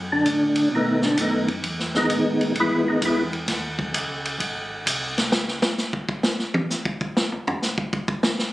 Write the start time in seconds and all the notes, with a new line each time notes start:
Already playing: F#2
0.12 D3 D4
0.25 A2, kick, hi-hat pedal, ride
0.55 ride
0.71 B2 D#4, kick
0.76 D#3 A3 B3
1.02 D3 D4, snare
1.17 F#2 A3 D#4, kick, hi-hat pedal, ride
1.21 D#3 B3
1.48 ride
1.63 E2, kick, ride
1.79 snare
1.95 D#3 G#3 B3 D#4, snare
2.09 A2, kick, hi-hat pedal, ride
2.41 ride
2.55 G#2, kick, ride
2.60 E3 G#3 B3 E4
2.88 D#3 G#3 B3 D#4
3.01 E2, kick, hi-hat pedal, ride
3.05 E3 G#3 B3 E4
3.33 ride
3.48 D#2, kick, snare, ride
3.79 kick
3.93 C#2, kick, hi-hat pedal, ride
4.25 ride
4.40 G#1, kick, ride
4.86 C2, kick, hi-hat pedal, ride
5.18 snare, ride
5.32 C#2, snare
5.48 snare
5.62 snare
5.78 snare, hi-hat pedal
5.93 kick
6.09 kick
6.23 snare
6.39 snare
6.54 high tom
6.70 snare, hi-hat pedal
6.85 kick
7.01 kick
7.17 snare
7.32 floor tom
7.47 floor tom
7.62 snare, hi-hat pedal
7.78 kick
7.93 kick
8.08 kick
8.23 snare
8.39 snare